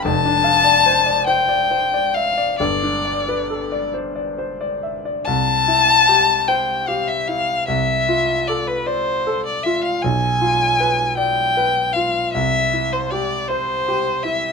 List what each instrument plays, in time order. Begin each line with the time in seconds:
0.03 grand piano F1, violin A5
0.25 grand piano D4
0.44 grand piano F5
0.64 grand piano D5
0.86 grand piano C5
1.06 grand piano D5
1.26 grand piano C5, violin G5
1.49 grand piano D5
1.71 grand piano C5
1.94 grand piano D5
2.14 grand piano E5, violin F5
2.38 grand piano D5
2.59 grand piano G1, violin D5
2.83 grand piano D4
3.05 grand piano D5
3.29 grand piano B4
3.50 grand piano A4
3.72 grand piano D5
3.94 grand piano C5
4.15 grand piano D5
4.38 grand piano C5
4.61 grand piano D5
4.83 grand piano E5
5.05 grand piano D5
5.25 grand piano C2, violin A5
5.68 grand piano E4
6.09 grand piano G4
6.48 grand piano C5, violin G5
6.88 grand piano G4, violin F5
7.08 violin E5
7.27 grand piano E4, violin F5
7.68 grand piano C2, violin E5
8.09 grand piano F4
8.48 grand piano A4, violin D5
8.68 violin B4
8.86 violin C5, grand piano D5
9.27 grand piano A4
9.46 violin D5
9.63 grand piano F4, violin E5
9.84 violin F5
10.02 grand piano B1, violin G#5
10.41 grand piano F4
10.80 grand piano B4
11.17 grand piano D5, violin G5
11.57 grand piano B4
11.93 grand piano F4, violin F5
12.33 grand piano C2, violin E5
12.73 grand piano E4
12.93 violin C5
13.11 grand piano G4, violin D5
13.48 violin C5, grand piano C5
13.88 grand piano G4
14.24 grand piano E4, violin E5